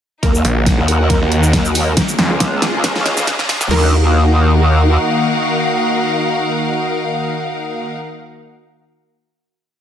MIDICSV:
0, 0, Header, 1, 8, 480
1, 0, Start_track
1, 0, Key_signature, -6, "minor"
1, 0, Tempo, 434783
1, 254, Time_signature, 4, 2, 24, 8
1, 10820, End_track
2, 0, Start_track
2, 0, Title_t, "String section"
2, 0, Program_c, 0, 48
2, 253, Note_on_c, 0, 63, 70
2, 584, Note_on_c, 0, 70, 73
2, 678, Note_on_c, 0, 78, 77
2, 2173, Note_off_c, 0, 78, 0
2, 2175, Note_on_c, 0, 61, 75
2, 2290, Note_on_c, 0, 68, 70
2, 2882, Note_off_c, 0, 70, 0
2, 2909, Note_on_c, 0, 75, 76
2, 2945, Note_off_c, 0, 63, 0
2, 3043, Note_on_c, 0, 77, 81
2, 4093, Note_off_c, 0, 75, 0
2, 4093, Note_off_c, 0, 77, 0
2, 4093, Note_on_c, 0, 63, 75
2, 4094, Note_off_c, 0, 61, 0
2, 4094, Note_off_c, 0, 68, 0
2, 4170, Note_on_c, 0, 70, 76
2, 4243, Note_on_c, 0, 77, 75
2, 4310, Note_on_c, 0, 78, 75
2, 8772, Note_off_c, 0, 63, 0
2, 8772, Note_off_c, 0, 70, 0
2, 8772, Note_off_c, 0, 77, 0
2, 8772, Note_off_c, 0, 78, 0
2, 10820, End_track
3, 0, Start_track
3, 0, Title_t, "Synth pluck"
3, 0, Program_c, 1, 84
3, 253, Note_on_c, 1, 58, 78
3, 253, Note_on_c, 1, 70, 99
3, 1125, Note_off_c, 1, 58, 0
3, 1125, Note_off_c, 1, 70, 0
3, 1213, Note_on_c, 1, 58, 76
3, 1213, Note_on_c, 1, 70, 93
3, 1845, Note_off_c, 1, 58, 0
3, 1845, Note_off_c, 1, 70, 0
3, 4093, Note_on_c, 1, 70, 96
3, 8854, Note_off_c, 1, 70, 0
3, 10820, End_track
4, 0, Start_track
4, 0, Title_t, "Analog synth pad"
4, 0, Program_c, 2, 89
4, 253, Note_on_c, 2, 51, 73
4, 253, Note_on_c, 2, 58, 73
4, 253, Note_on_c, 2, 66, 82
4, 2154, Note_off_c, 2, 51, 0
4, 2154, Note_off_c, 2, 58, 0
4, 2154, Note_off_c, 2, 66, 0
4, 2173, Note_on_c, 2, 49, 79
4, 2173, Note_on_c, 2, 56, 72
4, 2174, Note_on_c, 2, 65, 90
4, 4074, Note_off_c, 2, 49, 0
4, 4074, Note_off_c, 2, 56, 0
4, 4074, Note_off_c, 2, 65, 0
4, 4093, Note_on_c, 2, 51, 81
4, 4093, Note_on_c, 2, 58, 72
4, 4093, Note_on_c, 2, 66, 89
4, 8772, Note_off_c, 2, 51, 0
4, 8772, Note_off_c, 2, 58, 0
4, 8772, Note_off_c, 2, 66, 0
4, 10820, End_track
5, 0, Start_track
5, 0, Title_t, "Detuned saw bass"
5, 0, Program_c, 3, 39
5, 493, Note_on_c, 3, 34, 90
5, 842, Note_off_c, 3, 34, 0
5, 1342, Note_on_c, 3, 39, 92
5, 1676, Note_off_c, 3, 39, 0
5, 2413, Note_on_c, 3, 41, 94
5, 2522, Note_off_c, 3, 41, 0
5, 10820, End_track
6, 0, Start_track
6, 0, Title_t, "Wobble bass"
6, 0, Program_c, 4, 39
6, 253, Note_on_c, 4, 39, 86
6, 476, Note_off_c, 4, 39, 0
6, 863, Note_on_c, 4, 39, 92
6, 1322, Note_off_c, 4, 39, 0
6, 1693, Note_on_c, 4, 39, 93
6, 2156, Note_off_c, 4, 39, 0
6, 2543, Note_on_c, 4, 37, 96
6, 3003, Note_off_c, 4, 37, 0
6, 3023, Note_on_c, 4, 37, 88
6, 3722, Note_off_c, 4, 37, 0
6, 3982, Note_on_c, 4, 37, 100
6, 4076, Note_off_c, 4, 37, 0
6, 4094, Note_on_c, 4, 39, 92
6, 5489, Note_off_c, 4, 39, 0
6, 10820, End_track
7, 0, Start_track
7, 0, Title_t, "Riser"
7, 0, Program_c, 5, 103
7, 253, Note_on_c, 5, 60, 74
7, 4093, Note_off_c, 5, 60, 0
7, 10820, End_track
8, 0, Start_track
8, 0, Title_t, "Drums"
8, 253, Note_on_c, 9, 36, 88
8, 253, Note_on_c, 9, 38, 46
8, 253, Note_on_c, 9, 42, 75
8, 364, Note_off_c, 9, 36, 0
8, 364, Note_off_c, 9, 38, 0
8, 364, Note_off_c, 9, 42, 0
8, 383, Note_on_c, 9, 82, 47
8, 493, Note_off_c, 9, 82, 0
8, 494, Note_on_c, 9, 42, 52
8, 604, Note_off_c, 9, 42, 0
8, 733, Note_on_c, 9, 36, 92
8, 733, Note_on_c, 9, 38, 52
8, 733, Note_on_c, 9, 42, 80
8, 844, Note_off_c, 9, 36, 0
8, 844, Note_off_c, 9, 38, 0
8, 844, Note_off_c, 9, 42, 0
8, 974, Note_on_c, 9, 42, 52
8, 1084, Note_off_c, 9, 42, 0
8, 1213, Note_on_c, 9, 36, 98
8, 1214, Note_on_c, 9, 38, 57
8, 1214, Note_on_c, 9, 42, 81
8, 1324, Note_off_c, 9, 36, 0
8, 1324, Note_off_c, 9, 38, 0
8, 1324, Note_off_c, 9, 42, 0
8, 1453, Note_on_c, 9, 42, 52
8, 1564, Note_off_c, 9, 42, 0
8, 1582, Note_on_c, 9, 82, 72
8, 1693, Note_off_c, 9, 82, 0
8, 1693, Note_on_c, 9, 36, 93
8, 1693, Note_on_c, 9, 38, 66
8, 1693, Note_on_c, 9, 42, 82
8, 1804, Note_off_c, 9, 36, 0
8, 1804, Note_off_c, 9, 38, 0
8, 1804, Note_off_c, 9, 42, 0
8, 1823, Note_on_c, 9, 82, 50
8, 1934, Note_off_c, 9, 82, 0
8, 1934, Note_on_c, 9, 46, 95
8, 1934, Note_on_c, 9, 82, 49
8, 2044, Note_off_c, 9, 46, 0
8, 2044, Note_off_c, 9, 82, 0
8, 2173, Note_on_c, 9, 36, 90
8, 2173, Note_on_c, 9, 38, 73
8, 2173, Note_on_c, 9, 42, 79
8, 2284, Note_off_c, 9, 36, 0
8, 2284, Note_off_c, 9, 38, 0
8, 2284, Note_off_c, 9, 42, 0
8, 2303, Note_on_c, 9, 82, 49
8, 2413, Note_on_c, 9, 38, 77
8, 2413, Note_on_c, 9, 42, 54
8, 2414, Note_off_c, 9, 82, 0
8, 2524, Note_off_c, 9, 38, 0
8, 2524, Note_off_c, 9, 42, 0
8, 2653, Note_on_c, 9, 36, 96
8, 2653, Note_on_c, 9, 38, 83
8, 2653, Note_on_c, 9, 42, 82
8, 2764, Note_off_c, 9, 36, 0
8, 2764, Note_off_c, 9, 38, 0
8, 2764, Note_off_c, 9, 42, 0
8, 2894, Note_on_c, 9, 38, 89
8, 2894, Note_on_c, 9, 42, 53
8, 3004, Note_off_c, 9, 38, 0
8, 3004, Note_off_c, 9, 42, 0
8, 3133, Note_on_c, 9, 36, 95
8, 3134, Note_on_c, 9, 38, 92
8, 3134, Note_on_c, 9, 42, 86
8, 3244, Note_off_c, 9, 36, 0
8, 3244, Note_off_c, 9, 38, 0
8, 3244, Note_off_c, 9, 42, 0
8, 3263, Note_on_c, 9, 38, 79
8, 3373, Note_off_c, 9, 38, 0
8, 3374, Note_on_c, 9, 38, 97
8, 3374, Note_on_c, 9, 42, 57
8, 3484, Note_off_c, 9, 38, 0
8, 3484, Note_off_c, 9, 42, 0
8, 3504, Note_on_c, 9, 38, 86
8, 3504, Note_on_c, 9, 82, 70
8, 3613, Note_on_c, 9, 36, 98
8, 3614, Note_off_c, 9, 38, 0
8, 3614, Note_off_c, 9, 82, 0
8, 3614, Note_on_c, 9, 38, 103
8, 3614, Note_on_c, 9, 42, 79
8, 3724, Note_off_c, 9, 36, 0
8, 3725, Note_off_c, 9, 38, 0
8, 3725, Note_off_c, 9, 42, 0
8, 3744, Note_on_c, 9, 38, 96
8, 3854, Note_off_c, 9, 38, 0
8, 3854, Note_on_c, 9, 38, 105
8, 3854, Note_on_c, 9, 46, 92
8, 3965, Note_off_c, 9, 38, 0
8, 3965, Note_off_c, 9, 46, 0
8, 3984, Note_on_c, 9, 38, 97
8, 3984, Note_on_c, 9, 82, 78
8, 4094, Note_off_c, 9, 38, 0
8, 4094, Note_off_c, 9, 82, 0
8, 4094, Note_on_c, 9, 38, 107
8, 4094, Note_on_c, 9, 49, 89
8, 4204, Note_off_c, 9, 38, 0
8, 4204, Note_off_c, 9, 49, 0
8, 10820, End_track
0, 0, End_of_file